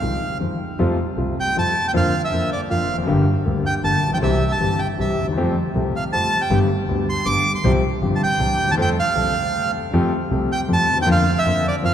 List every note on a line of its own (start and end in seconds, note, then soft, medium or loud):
0.00 0.18 C2 soft
0.00 0.18 C3 medium
0.00 0.18 D#3 soft
0.00 0.18 G#3 soft
0.00 0.18 C4 soft
0.00 0.18 F4 soft
0.00 0.38 F5 medium
0.40 0.57 F2 medium
0.40 0.57 F2 soft
0.40 0.57 D#3 soft
0.40 0.57 F3 soft
0.40 0.57 G#3 soft
0.40 0.57 C4 soft
0.40 0.57 F4 soft
0.79 0.95 F2 medium
0.79 0.96 F2 medium
0.79 0.96 C3 medium
0.79 0.96 F3 medium
0.79 0.95 G3 medium
0.79 0.96 A3 medium
0.79 0.96 F4 medium
1.17 1.34 C2 medium
1.17 1.34 C3 medium
1.17 1.34 G3 soft
1.17 1.34 A3 soft
1.17 1.34 F4 medium
1.40 1.57 G5 medium
1.56 1.72 F2 medium
1.56 1.73 F2 medium
1.56 1.72 C3 soft
1.56 1.73 F3 medium
1.56 1.73 G3 soft
1.56 1.73 A3 soft
1.56 1.73 F4 medium
1.56 1.87 A5 medium
1.88 1.92 G5 medium
1.94 2.10 F2 medium
1.94 2.10 D3 medium
1.94 2.10 F3 medium
1.94 2.10 A#3 medium
1.94 2.10 F4 medium
1.94 2.22 F5 medium
2.24 2.50 E5 medium
2.31 2.48 F2 medium
2.31 2.48 D3 medium
2.31 2.48 F3 medium
2.31 2.48 A#3 soft
2.31 2.48 F4 medium
2.53 2.61 D5 medium
2.70 2.86 F2 medium
2.70 2.86 D3 soft
2.70 2.86 F3 medium
2.70 2.86 A#3 soft
2.70 2.86 F4 medium
2.70 2.97 F5 medium
2.88 3.06 F1 medium
2.93 2.98 E2 medium
2.98 3.03 F2 medium
3.03 3.23 G1 loud
3.03 3.08 F#2 medium
3.03 3.23 D3 medium
3.07 3.24 G1 medium
3.07 3.24 G2 medium
3.07 3.24 G3 medium
3.07 3.24 A#3 medium
3.07 3.24 G4 medium
3.45 3.61 D2 medium
3.45 3.62 D2 medium
3.45 3.61 D3 medium
3.45 3.62 G3 soft
3.45 3.62 A#3 soft
3.45 3.62 G4 medium
3.66 3.74 G5 medium
3.83 3.99 G1 medium
3.83 4.00 G1 medium
3.83 4.00 G2 medium
3.83 4.00 D3 soft
3.83 4.00 G3 soft
3.83 4.00 A#3 soft
3.83 4.00 G4 medium
3.83 4.10 A5 loud
4.02 4.20 A#1 medium
4.07 4.12 A1 soft
4.12 4.17 A#1 medium
4.12 4.18 G5 medium
4.17 4.22 B1 medium
4.17 4.37 C2 medium
4.22 4.38 C2 medium
4.22 4.38 C3 medium
4.22 4.38 E3 medium
4.22 4.38 G3 medium
4.22 4.38 C4 medium
4.22 4.38 G4 medium
4.22 4.52 E5 medium
4.52 4.80 A5 medium
4.59 4.76 G1 medium
4.59 4.76 G2 medium
4.59 4.76 E3 medium
4.59 4.76 G3 soft
4.59 4.76 C4 soft
4.59 4.76 G4 medium
4.79 4.87 G5 medium
4.98 5.14 C2 medium
4.98 5.15 C2 medium
4.98 5.15 C3 medium
4.98 5.15 E3 soft
4.98 5.15 G3 soft
4.98 5.15 C4 soft
4.98 5.15 G4 soft
4.98 5.26 E5 medium
5.18 5.36 D#2 medium
5.22 5.27 D2 soft
5.27 5.32 D#2 medium
5.32 5.37 E2 medium
5.37 5.53 F2 medium
5.37 5.53 F3 medium
5.37 5.53 A3 medium
5.37 5.53 C4 medium
5.37 5.53 G4 medium
5.75 5.91 C2 medium
5.75 5.91 C3 medium
5.75 5.91 F3 soft
5.75 5.91 A3 soft
5.75 5.91 C4 soft
5.75 5.91 G4 medium
5.96 6.04 F5 medium
6.13 6.29 F2 medium
6.13 6.29 F3 medium
6.13 6.29 A3 soft
6.13 6.29 C4 soft
6.13 6.29 G4 medium
6.13 6.42 A5 loud
6.41 6.59 G5 medium
6.50 6.66 G1 medium
6.50 6.67 G1 medium
6.50 6.67 G2 medium
6.50 6.67 D3 medium
6.50 6.67 G3 medium
6.50 6.67 B3 medium
6.50 6.67 G4 medium
6.88 7.04 D2 medium
6.88 7.05 D2 medium
6.88 7.05 D3 medium
6.88 7.04 G3 soft
6.88 7.04 B3 soft
6.88 7.05 G4 medium
7.10 7.28 C6 medium
7.25 7.42 G1 medium
7.25 7.42 G2 medium
7.25 7.42 D3 soft
7.25 7.42 G3 soft
7.25 7.42 B3 soft
7.25 7.42 G4 medium
7.25 7.52 D6 loud
7.55 7.72 C6 medium
7.64 7.80 C2 medium
7.64 7.80 C3 medium
7.64 7.80 F3 medium
7.64 7.80 G3 medium
7.64 7.80 C4 medium
7.64 7.80 G4 medium
8.01 8.17 G1 medium
8.01 8.18 G1 medium
8.01 8.18 G2 medium
8.01 8.18 F3 medium
8.01 8.18 G3 soft
8.01 8.18 C4 soft
8.01 8.18 G4 medium
8.16 8.22 A5 medium
8.23 8.71 G5 medium
8.39 8.55 C2 medium
8.39 8.56 C2 medium
8.39 8.56 C3 medium
8.39 8.56 E3 soft
8.39 8.56 C4 soft
8.39 8.56 D4 soft
8.39 8.56 G4 medium
8.59 8.77 D#2 medium
8.64 8.68 D2 medium
8.64 8.73 D#2 medium
8.71 8.78 E2 medium
8.71 8.75 A5 loud
8.77 8.93 F2 medium
8.77 8.94 F2 medium
8.77 8.94 F3 medium
8.77 8.94 A3 medium
8.77 8.94 C4 medium
8.77 8.94 A4 medium
8.82 8.89 G5 medium
8.99 9.71 F5 medium
9.15 9.32 C2 medium
9.15 9.32 C3 medium
9.15 9.32 F3 soft
9.15 9.32 A3 soft
9.15 9.32 C4 soft
9.15 9.32 A4 medium
9.92 10.09 F2 medium
9.92 10.10 F2 medium
9.92 10.10 F3 medium
9.92 10.10 A3 medium
9.92 10.10 C4 medium
9.92 10.10 G4 medium
10.31 10.47 C2 medium
10.31 10.47 C3 medium
10.31 10.47 F3 soft
10.31 10.47 A3 soft
10.31 10.47 C4 soft
10.31 10.47 G4 medium
10.52 10.60 G5 medium
10.68 10.85 F2 medium
10.68 10.85 F3 medium
10.68 10.85 A3 soft
10.68 10.85 C4 soft
10.68 10.85 G4 medium
10.73 10.98 A5 loud
10.88 11.06 D#2 medium
10.93 10.98 D2 medium
10.98 11.03 D#2 medium
11.02 11.07 E2 medium
11.02 11.09 G5 loud
11.06 11.23 F2 medium
11.06 11.23 D3 medium
11.06 11.23 F3 medium
11.06 11.23 A#3 medium
11.06 11.23 F4 medium
11.12 11.39 F5 medium
11.38 11.66 E5 medium
11.44 11.61 F2 medium
11.44 11.62 F2 medium
11.44 11.62 D3 medium
11.44 11.62 F3 medium
11.44 11.62 A#3 soft
11.44 11.62 F4 medium
11.68 11.76 D5 medium
11.83 11.94 F2 medium
11.83 11.94 D3 medium
11.83 11.94 F3 medium
11.83 11.94 A#3 soft
11.83 11.94 F4 medium
11.83 11.94 F5 medium